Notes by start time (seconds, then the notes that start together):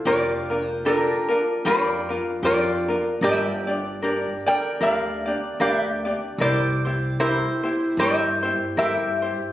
0.05 F1 D4 F4 G4 A#4 D5
0.50 D4 F4 A#4
0.66 C5
0.85 D4 F4 G4 A#4
1.29 D4 F4 A#4
1.65 F2 D4 F4 G4 A#4 D5
2.09 D4 F4 A#4
2.43 F2 D4 F4 G4 A#4 D5
2.88 D4 F4 A#4
3.21 G1 D4 G4 A#4 D5 E5
3.67 D4 G4 D5
4.02 D4 G4 A#4 D5
4.46 D4 G4 A#4 D5 G5
4.80 D2 D4 G4 A#4 D5 F5
5.26 D4 G4 D5
5.60 D2 D4 G4 A#4 D5 F5
5.72 E5
6.05 D4 G4 D5
6.38 C2 E4 G4 A#4 C5 D5
6.85 E4 G4 C5
7.20 E4 G4 A#4 C5
7.63 E4 G4 C5
7.97 G2 E4 G4 A#4 C5 E5
8.43 E4 G4 C5
8.77 G2 E4 G4 A#4 C5 E5
9.22 E4 G4 C5